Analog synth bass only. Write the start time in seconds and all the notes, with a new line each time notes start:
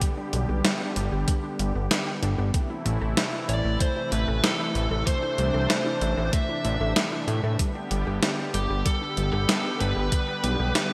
0.33 B1
0.49 B1
0.96 G1
1.12 G1
1.59 G1
1.75 G1
2.22 G1
2.38 G1
2.86 A1
3.01 A1
3.49 A1
3.65 A1
4.12 A1
4.28 A1
4.75 A1
4.91 A1
5.38 C2
5.54 C2
6.01 A1
6.17 A1
6.65 A1
6.80 A1
7.28 A2
7.43 A2
7.91 G1
8.07 G1
8.54 G1
8.70 G1
9.17 G1
9.33 G1
9.81 G1
9.96 G1
10.44 B1
10.60 B1